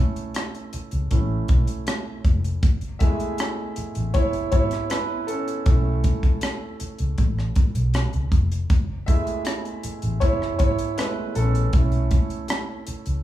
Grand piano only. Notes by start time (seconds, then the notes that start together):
Already playing: A3 C#4 E4 A4
1.11 A3 C#4 E4
2.99 G#3 A3 E4 G#4 E5
4.14 E4 C#5
4.51 E4 C#5
4.90 E4 B4
5.27 C#4 A4
5.66 A3 C#4 E4
9.06 G#3 A3 E4 G#4 E5
10.20 E4 C#5
10.59 E4 C#5
10.97 G#3 A3 E4 B4
11.36 C#4 A4
11.74 A3 C#4 E4